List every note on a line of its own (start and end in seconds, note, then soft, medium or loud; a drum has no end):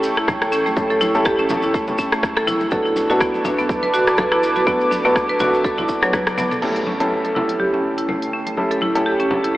0.00 0.43 E1 medium
0.00 0.74 A3 medium
0.00 0.74 C#4 medium
0.00 0.74 E4 medium
0.00 0.74 G4 medium
0.00 0.74 A4 loud
0.00 2.68 A4 medium
0.00 2.68 G5 medium
0.00 2.68 C#6 medium
0.00 maracas medium
0.17 0.27 E4 medium
0.17 cross-stick medium
0.17 maracas soft
0.28 0.40 A3 medium
0.28 kick loud
0.28 cross-stick medium
0.28 muted conga soft
0.28 high conga medium
0.28 low conga medium
0.28 maracas soft
0.42 0.72 A1 medium
0.42 cross-stick medium
0.42 maracas soft
0.52 0.60 C#4 medium
0.52 maracas loud
0.66 0.72 A3 medium
0.66 muted conga soft
0.66 maracas soft
0.76 1.09 A1 loud
0.76 1.12 A3 medium
0.76 1.12 C#4 medium
0.76 1.12 E4 medium
0.76 1.12 G4 medium
0.76 1.12 A4 medium
0.76 kick loud
0.76 high conga medium
0.76 maracas medium
0.90 1.00 A4 loud
0.90 maracas soft
1.01 1.08 E4 loud
1.01 muted conga medium
1.01 high conga medium
1.01 maracas medium
1.14 1.23 A1 medium
1.14 2.69 A3 medium
1.14 2.69 C#4 medium
1.14 2.69 E4 medium
1.14 2.69 G4 medium
1.14 2.69 A4 loud
1.14 maracas soft
1.25 1.38 G4 loud
1.25 kick loud
1.25 cross-stick medium
1.25 maracas soft
1.39 1.49 C#4 medium
1.39 muted conga soft
1.39 maracas soft
1.49 1.82 A1 loud
1.49 high conga medium
1.49 low conga loud
1.49 maracas medium
1.62 1.74 E4 medium
1.62 maracas soft
1.74 1.86 A3 medium
1.74 kick loud
1.74 maracas medium
1.87 2.38 E1 medium
1.87 muted conga medium
1.87 low conga medium
1.87 maracas soft
1.98 2.06 C#4 medium
1.98 kick medium
1.98 maracas medium
2.12 2.18 A3 medium
2.12 cross-stick medium
2.12 maracas soft
2.23 kick loud
2.23 cross-stick medium
2.23 muted conga soft
2.23 maracas soft
2.37 2.68 A1 medium
2.37 2.46 A4 loud
2.37 cross-stick medium
2.37 maracas soft
2.47 2.55 E4 loud
2.47 high conga medium
2.47 low conga medium
2.47 maracas medium
2.60 muted conga soft
2.60 maracas soft
2.71 3.04 B1 loud
2.71 3.07 A3 medium
2.71 3.07 B3 medium
2.71 3.07 D4 medium
2.71 3.07 F#4 medium
2.71 2.85 A4 loud
2.71 3.07 A4 medium
2.71 6.58 B4 medium
2.71 6.58 A5 medium
2.71 6.58 D6 medium
2.71 kick loud
2.71 high conga medium
2.71 maracas soft
2.85 2.96 E4 medium
2.85 maracas soft
2.96 muted conga medium
2.96 high conga medium
2.96 maracas medium
3.10 3.18 B1 medium
3.10 4.64 A3 medium
3.10 4.64 B3 medium
3.10 4.64 D4 medium
3.10 3.20 F#4 medium
3.10 4.64 F#4 medium
3.10 4.64 A4 loud
3.10 maracas soft
3.20 3.33 B3 medium
3.20 kick loud
3.20 cross-stick medium
3.20 maracas medium
3.34 muted conga soft
3.34 maracas soft
3.44 3.77 B1 loud
3.44 3.52 D4 medium
3.44 kick medium
3.44 high conga medium
3.44 low conga loud
3.44 maracas medium
3.59 3.64 B3 medium
3.59 maracas soft
3.69 kick loud
3.69 high conga medium
3.69 maracas soft
3.83 4.33 F#1 medium
3.83 3.93 B4 loud
3.83 muted conga medium
3.83 maracas soft
3.94 4.01 F#4 loud
3.94 maracas medium
4.07 cross-stick medium
4.07 maracas soft
4.18 4.31 A4 loud
4.18 kick loud
4.18 cross-stick medium
4.18 muted conga soft
4.18 high conga loud
4.18 low conga medium
4.18 maracas soft
4.32 4.63 B1 medium
4.32 4.42 E4 medium
4.32 cross-stick medium
4.32 maracas soft
4.43 maracas medium
4.55 4.66 F#4 medium
4.55 muted conga medium
4.55 maracas soft
4.67 4.99 B1 loud
4.67 5.02 A3 medium
4.67 5.02 B3 medium
4.67 4.79 B3 medium
4.67 5.02 D4 medium
4.67 5.02 F#4 medium
4.67 5.02 A4 medium
4.67 kick loud
4.67 high conga medium
4.67 maracas soft
4.81 maracas soft
4.91 4.99 D4 medium
4.91 muted conga soft
4.91 high conga medium
4.91 maracas medium
5.05 5.13 B1 loud
5.05 6.00 A3 medium
5.05 6.00 B3 medium
5.05 5.11 B3 medium
5.05 6.00 D4 medium
5.05 6.00 F#4 medium
5.05 6.00 A4 loud
5.05 maracas soft
5.16 kick loud
5.16 cross-stick medium
5.16 maracas soft
5.29 5.39 B4 loud
5.29 muted conga soft
5.29 maracas soft
5.39 5.73 B1 loud
5.39 5.48 F#4 loud
5.39 high conga medium
5.39 low conga loud
5.39 maracas medium
5.54 maracas soft
5.64 5.78 A4 loud
5.64 kick loud
5.64 maracas soft
5.78 5.86 B1 medium
5.78 5.88 E4 medium
5.78 muted conga medium
5.78 low conga medium
5.78 maracas soft
5.89 kick medium
5.89 maracas medium
6.02 6.12 F#3 loud
6.02 6.16 A3 medium
6.02 6.16 B3 medium
6.02 6.16 D4 medium
6.02 6.16 F#4 medium
6.02 6.16 C#5 medium
6.02 cross-stick medium
6.02 maracas soft
6.13 6.26 B4 medium
6.13 kick loud
6.13 cross-stick medium
6.13 muted conga soft
6.13 maracas soft
6.27 6.58 F#1 medium
6.27 cross-stick medium
6.27 maracas soft
6.37 6.50 B3 medium
6.37 high tom medium
6.37 high conga medium
6.37 low conga medium
6.37 maracas medium
6.51 6.62 A4 medium
6.51 mid tom medium
6.51 muted conga medium
6.51 maracas soft
6.62 6.97 A3 medium
6.62 6.74 A3 medium
6.62 9.57 C#4 medium
6.62 6.97 C#4 medium
6.62 6.97 E4 medium
6.62 6.97 G4 medium
6.62 9.57 A4 medium
6.62 6.97 A4 medium
6.62 9.57 G5 medium
6.62 crash medium
6.62 impact medium
6.62 high conga medium
6.76 closed hi-hat soft
6.86 6.94 C#4 medium
6.86 muted conga medium
6.86 high conga medium
7.00 8.55 A3 medium
7.00 7.06 A3 medium
7.00 8.55 C#4 medium
7.00 8.55 E4 medium
7.00 8.55 G4 medium
7.00 8.55 A4 loud
7.00 closed hi-hat medium
7.24 7.34 A4 medium
7.24 closed hi-hat soft
7.24 muted conga soft
7.35 7.43 E4 medium
7.35 high conga medium
7.35 low conga loud
7.49 closed hi-hat medium
7.59 7.73 G4 medium
7.59 high conga medium
7.73 7.84 C#4 medium
7.73 muted conga medium
7.98 8.08 E4 medium
7.98 closed hi-hat medium
8.08 8.21 A3 medium
8.08 muted conga soft
8.08 high conga medium
8.08 low conga medium
8.22 closed hi-hat soft
8.33 8.40 C#4 medium
8.47 8.52 A3 medium
8.47 closed hi-hat medium
8.47 muted conga soft
8.57 8.92 A3 medium
8.57 8.92 C#4 medium
8.57 8.92 E4 medium
8.57 8.92 G4 medium
8.57 8.92 A4 medium
8.57 high conga medium
8.71 8.81 A4 medium
8.71 closed hi-hat soft
8.81 8.89 E4 loud
8.81 muted conga medium
8.81 high conga medium
8.95 9.57 A3 medium
8.95 9.57 C#4 medium
8.95 9.57 E4 medium
8.95 9.57 G4 medium
8.95 9.57 A4 loud
8.95 closed hi-hat medium
9.06 9.19 G4 loud
9.20 9.30 C#4 medium
9.20 closed hi-hat soft
9.20 muted conga soft
9.31 high conga medium
9.31 low conga loud
9.44 9.54 E4 medium
9.44 closed hi-hat medium